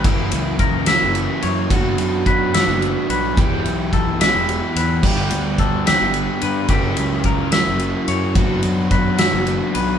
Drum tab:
CC |------|------|------|x-----|
RD |xxxxxx|xxxxxx|xxxxxx|-xxxxx|
SD |---o--|---o--|---o--|---o--|
BD |o-o---|o-o---|o-o---|o-o---|

CC |------|------|
RD |xxxxxx|xxxxxx|
SD |---o--|---o--|
BD |o-o---|o-o---|